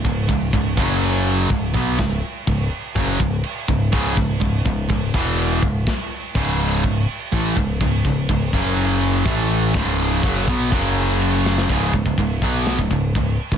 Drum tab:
CC |x---x---x---x---|x---x---x---x---|x---x---x---x---|x---x---x---x---|
SD |----------------|o---------------|----------------|o---------------|
BD |o-o-o-o-----o-o-|o---o---o-o---o-|o-o-o-o-o-o---o-|o---o---o---o-o-|

CC |x---x---x---x---|x---x---x---x---|x---x---x---x---|
SD |----------------|o-------------oo|--------o-------|
BD |o-o-o-o-----o---|o---o-o-o-------|o-ooo-o--oo-o--o|